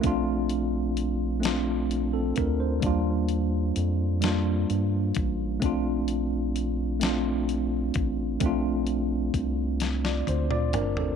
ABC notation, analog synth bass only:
X:1
M:6/8
L:1/8
Q:3/8=43
K:Bb
V:1 name="Analog synth bass" clef=bass
B,,,4- B,,, D,, | E,,2 F,,2 G,, A,,, | B,,,4- B,,, A,,, | B,,,2 C,,2 D,, G,,, |]